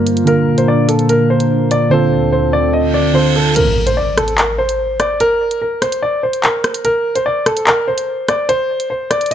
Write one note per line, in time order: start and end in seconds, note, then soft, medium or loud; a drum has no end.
0.00 0.24 G2 medium
0.00 0.22 D3 medium
0.00 0.23 G3 medium
0.00 0.24 G3 medium
0.00 1.88 A#3 medium
0.00 0.23 F4 medium
0.00 3.52 F4 medium
0.00 0.24 A#4 medium
0.00 0.25 A#4 medium
0.07 closed hi-hat medium
0.17 closed hi-hat medium
0.25 1.90 A#2 medium
0.25 1.87 D3 medium
0.25 1.88 A#3 medium
0.25 1.90 D4 medium
0.25 1.88 F4 medium
0.25 0.56 A#4 loud
0.25 1.89 A#4 medium
0.25 closed hi-hat medium
0.58 0.67 C5 medium
0.58 closed hi-hat medium
0.68 0.86 D5 medium
0.89 1.07 A4 medium
0.89 closed hi-hat medium
0.99 closed hi-hat medium
1.09 1.28 A#4 medium
1.09 closed hi-hat medium
1.30 1.69 C5 medium
1.40 closed hi-hat medium
1.71 1.89 D5 medium
1.71 closed hi-hat medium
1.90 3.54 D2 medium
1.90 3.12 D3 medium
1.90 3.54 D3 medium
1.90 3.12 C4 medium
1.90 3.54 C4 medium
1.90 3.13 F4 medium
1.90 3.13 A4 medium
1.90 2.30 C5 loud
2.32 2.51 C5 medium
2.53 2.71 D5 medium
2.73 2.92 D#5 medium
2.73 reverse cymbal medium
2.94 3.12 D5 medium
3.14 3.55 D3 soft
3.14 3.56 C4 soft
3.14 3.56 F4 soft
3.14 3.56 A4 medium
3.14 3.33 C5 medium
3.36 3.54 A4 medium
3.56 3.85 A#4 medium
3.56 closed hi-hat medium
3.56 crash medium
3.56 impact medium
3.87 3.96 C5 medium
3.87 closed hi-hat medium
3.97 4.15 D5 medium
4.18 4.36 A4 medium
4.18 cross-stick loud
4.18 closed hi-hat medium
4.28 closed hi-hat medium
4.38 4.56 A#4 medium
4.38 clap loud
4.38 closed hi-hat medium
4.58 4.97 C5 medium
4.69 closed hi-hat medium
5.00 5.18 D5 medium
5.00 cross-stick medium
5.00 closed hi-hat medium
5.20 5.59 A#4 loud
5.20 closed hi-hat medium
5.51 closed hi-hat medium
5.62 5.80 A#4 medium
5.82 6.00 C5 medium
5.82 cross-stick loud
5.82 closed hi-hat loud
5.92 closed hi-hat medium
6.03 6.21 D5 medium
6.23 6.41 C5 medium
6.33 closed hi-hat medium
6.44 6.82 A#4 medium
6.44 clap loud
6.44 closed hi-hat medium
6.64 cross-stick loud
6.64 closed hi-hat medium
6.74 closed hi-hat medium
6.85 7.14 A#4 loud
6.85 closed hi-hat medium
7.15 7.25 C5 medium
7.15 closed hi-hat medium
7.26 7.44 D5 medium
7.46 7.64 A4 medium
7.46 cross-stick loud
7.46 closed hi-hat medium
7.57 closed hi-hat medium
7.67 7.85 A#4 medium
7.67 clap loud
7.67 closed hi-hat medium
7.88 8.26 C5 medium
7.98 closed hi-hat medium
8.28 8.47 D5 medium
8.28 cross-stick loud
8.28 closed hi-hat medium
8.49 8.88 C5 loud
8.49 closed hi-hat medium
8.80 closed hi-hat medium
8.90 9.08 C5 medium
9.11 9.29 D5 medium
9.11 cross-stick medium
9.11 closed hi-hat medium
9.21 closed hi-hat soft
9.26 closed hi-hat medium
9.31 9.34 D#5 medium
9.31 closed hi-hat medium